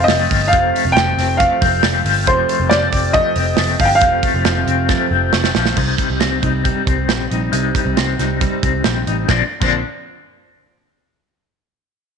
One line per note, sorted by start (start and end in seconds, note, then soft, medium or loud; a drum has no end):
0.00 0.51 F2 medium
0.00 0.19 C3 medium
0.00 0.20 F3 medium
0.00 0.29 F3 medium
0.00 0.19 A3 medium
0.00 0.18 C4 medium
0.00 0.52 D#5 loud
0.08 0.26 F1 loud
0.08 0.19 G3 medium
0.08 snare loud
0.08 hi-hat pedal medium
0.08 open hi-hat medium
0.19 0.51 F3 soft
0.19 0.52 A3 medium
0.19 0.52 C4 medium
0.30 0.53 G1 medium
0.30 0.95 F3 medium
0.30 kick loud
0.30 hi-hat pedal medium
0.30 open hi-hat medium
0.48 0.85 F2 medium
0.48 0.84 C3 medium
0.48 0.95 F5 loud
0.53 0.71 F1 loud
0.53 0.85 F3 medium
0.53 0.84 A3 medium
0.53 0.83 C4 medium
0.53 kick loud
0.53 hi-hat pedal medium
0.53 open hi-hat loud
0.74 1.38 A3 medium
0.74 hi-hat pedal medium
0.74 open hi-hat medium
0.84 0.94 F1 medium
0.84 1.07 F2 medium
0.84 1.06 C3 medium
0.84 1.06 F3 medium
0.84 1.06 A3 medium
0.84 1.05 C4 medium
0.92 1.14 F1 loud
0.92 1.39 G5 loud
0.96 2.04 F3 medium
0.96 snare loud
0.96 hi-hat pedal medium
0.96 open hi-hat medium
1.06 1.39 F2 medium
1.06 1.40 C3 medium
1.06 1.40 F3 medium
1.06 1.40 A3 medium
1.06 1.39 C4 medium
1.17 1.45 F1 loud
1.17 1.61 C4 medium
1.17 snare soft
1.17 hi-hat pedal medium
1.17 open hi-hat medium
1.37 1.62 F2 medium
1.37 1.60 C3 medium
1.37 1.61 F3 medium
1.37 2.00 F5 loud
1.37 kick loud
1.37 hi-hat pedal medium
1.37 open hi-hat medium
1.42 1.62 A3 medium
1.42 1.63 C4 medium
1.61 1.80 F1 loud
1.61 1.94 C3 medium
1.61 1.94 F3 medium
1.61 1.93 A3 medium
1.61 1.91 C4 medium
1.61 kick loud
1.61 hi-hat pedal medium
1.61 open hi-hat medium
1.83 2.02 F1 medium
1.83 1.94 G3 medium
1.83 snare loud
1.83 hi-hat pedal medium
1.83 open hi-hat medium
1.92 2.26 F3 medium
1.92 2.27 A3 medium
1.92 2.26 C4 medium
2.05 2.27 G1 medium
2.05 2.69 F3 medium
2.05 hi-hat pedal medium
2.05 open hi-hat medium
2.26 2.45 F1 loud
2.26 2.60 F2 medium
2.26 2.60 C3 medium
2.26 2.60 F3 medium
2.26 2.60 A3 medium
2.26 2.59 C4 medium
2.26 2.72 C5 medium
2.26 kick loud
2.26 hi-hat pedal medium
2.26 open hi-hat loud
2.48 3.13 A3 medium
2.48 hi-hat pedal medium
2.48 open hi-hat medium
2.60 2.69 F1 medium
2.60 2.83 F2 medium
2.60 2.82 C3 medium
2.60 2.82 F3 medium
2.60 2.82 A3 medium
2.60 2.80 C4 medium
2.69 2.88 F1 medium
2.69 3.79 F3 medium
2.69 3.11 D5 loud
2.69 snare loud
2.69 hi-hat pedal medium
2.69 open hi-hat medium
2.82 3.14 F2 medium
2.82 3.14 C3 medium
2.82 3.15 F3 medium
2.82 3.15 A3 medium
2.82 3.15 C4 medium
2.92 3.20 F1 loud
2.92 3.36 C4 medium
2.92 kick medium
2.92 snare soft
2.92 hi-hat pedal medium
2.92 open hi-hat medium
3.13 3.37 F2 medium
3.13 3.35 C3 medium
3.13 3.36 F3 medium
3.13 3.37 A3 medium
3.13 3.38 C4 medium
3.13 3.76 D#5 loud
3.13 kick loud
3.13 hi-hat pedal medium
3.13 open hi-hat medium
3.36 3.54 F1 loud
3.36 3.69 C3 medium
3.36 3.70 F3 medium
3.36 3.69 A3 medium
3.36 4.67 C4 medium
3.36 hi-hat pedal medium
3.36 open hi-hat medium
3.40 3.68 C4 medium
3.57 3.75 F1 loud
3.57 4.23 A3 medium
3.57 snare loud
3.57 hi-hat pedal medium
3.57 open hi-hat medium
3.69 4.01 F3 soft
3.69 4.02 A3 medium
3.69 4.02 C4 medium
3.79 4.01 G1 medium
3.79 4.44 F3 medium
3.79 3.86 F5 medium
3.79 kick loud
3.79 hi-hat pedal medium
3.79 open hi-hat medium
3.85 3.93 G5 medium
3.95 5.30 F5 loud
4.01 4.19 F1 loud
4.01 4.34 F2 medium
4.01 4.35 C3 medium
4.01 4.34 F3 medium
4.01 4.33 A3 medium
4.01 4.33 C4 medium
4.01 kick loud
4.01 hi-hat pedal medium
4.01 open hi-hat loud
4.23 4.88 A3 medium
4.23 kick loud
4.23 hi-hat pedal medium
4.23 open hi-hat medium
4.34 4.43 F1 medium
4.34 4.57 F2 medium
4.34 4.56 C3 medium
4.34 4.57 F3 medium
4.34 4.56 A3 medium
4.34 4.55 C4 medium
4.45 4.63 F1 loud
4.45 5.54 F3 medium
4.45 snare loud
4.45 hi-hat pedal medium
4.45 open hi-hat medium
4.57 4.88 F2 medium
4.57 4.89 C3 medium
4.57 4.89 F3 medium
4.57 4.89 A3 medium
4.57 4.89 C4 medium
4.67 4.94 F1 loud
4.67 5.11 C4 medium
4.67 hi-hat pedal medium
4.67 open hi-hat medium
4.89 5.11 F2 medium
4.89 5.10 C3 medium
4.89 5.11 F3 medium
4.89 5.12 A3 medium
4.89 5.12 C4 medium
4.89 kick loud
4.89 snare medium
5.11 5.29 F1 loud
5.11 5.44 C3 medium
5.11 5.45 F3 medium
5.11 5.45 A3 medium
5.11 5.43 C4 medium
5.33 5.51 F1 medium
5.33 5.81 A3 medium
5.33 snare loud
5.44 5.76 F3 medium
5.44 5.77 A3 medium
5.44 5.76 C4 medium
5.44 snare medium
5.55 5.73 A#1 loud
5.55 5.81 F3 medium
5.55 snare loud
5.65 snare loud
5.76 5.95 C2 medium
5.76 6.09 C3 medium
5.76 6.10 G3 medium
5.76 6.09 C4 medium
5.76 6.08 D#4 medium
5.76 kick loud
5.76 crash medium
5.98 6.63 G3 medium
5.98 kick medium
5.98 closed hi-hat medium
6.09 6.19 C2 medium
6.09 6.41 C3 medium
6.09 6.41 G3 medium
6.09 6.42 C4 medium
6.09 6.42 D#4 medium
6.20 6.39 C2 medium
6.20 6.86 C4 medium
6.20 snare loud
6.20 closed hi-hat medium
6.42 6.70 C2 loud
6.42 6.63 C3 medium
6.42 6.64 G3 medium
6.42 6.64 C4 medium
6.42 6.65 D#4 loud
6.42 kick medium
6.42 closed hi-hat medium
6.64 6.97 C3 medium
6.64 6.98 G3 medium
6.64 6.98 C4 medium
6.64 6.96 D#4 loud
6.64 kick medium
6.64 closed hi-hat medium
6.87 7.09 C2 loud
6.87 7.97 C4 medium
6.87 kick medium
6.87 closed hi-hat medium
6.97 7.30 G3 soft
6.97 7.31 C4 soft
6.97 7.30 D#4 medium
7.08 7.27 A#1 medium
7.08 7.74 G3 medium
7.08 snare loud
7.08 closed hi-hat medium
7.30 7.49 A#1 medium
7.30 7.51 C3 medium
7.30 7.52 G3 medium
7.30 7.53 C4 medium
7.30 7.54 D#4 medium
7.30 closed hi-hat medium
7.53 7.71 C2 loud
7.53 7.85 C3 medium
7.53 7.84 G3 medium
7.53 7.84 C4 medium
7.53 7.83 D#4 medium
7.53 closed hi-hat loud
7.75 8.40 G3 medium
7.75 kick loud
7.75 closed hi-hat medium
7.84 7.95 C2 loud
7.84 8.17 C3 medium
7.84 8.18 G3 medium
7.84 8.18 C4 medium
7.84 8.18 D#4 medium
7.97 8.15 C2 medium
7.97 8.63 C4 medium
7.97 snare loud
7.97 closed hi-hat medium
8.18 8.46 C2 loud
8.18 8.39 C3 medium
8.18 8.40 G3 loud
8.18 8.40 C4 medium
8.18 8.41 D#4 medium
8.18 snare soft
8.18 closed hi-hat medium
8.40 8.73 C3 medium
8.40 8.74 G3 medium
8.40 8.74 C4 medium
8.40 8.72 D#4 medium
8.40 kick loud
8.40 closed hi-hat medium
8.63 8.81 C2 loud
8.63 9.30 C4 medium
8.63 kick medium
8.63 closed hi-hat medium
8.73 9.06 G3 medium
8.73 9.07 C4 medium
8.73 9.06 D#4 medium
8.84 9.03 A#1 medium
8.84 9.29 G3 medium
8.84 snare loud
8.84 closed hi-hat medium
9.06 9.25 A1 medium
9.06 9.28 C3 medium
9.06 9.29 G3 medium
9.06 9.29 C4 medium
9.06 9.30 D#4 medium
9.06 closed hi-hat medium
9.28 9.41 A#1 medium
9.28 9.41 A#2 medium
9.28 9.42 D3 medium
9.28 9.42 F3 medium
9.28 9.42 C4 medium
9.28 9.43 D4 medium
9.28 kick loud
9.28 snare medium
9.61 9.82 A#1 medium
9.61 9.79 A#2 medium
9.61 9.80 D3 medium
9.61 9.80 F3 medium
9.61 9.80 C4 medium
9.61 9.81 D4 medium
9.61 kick loud
9.61 crash medium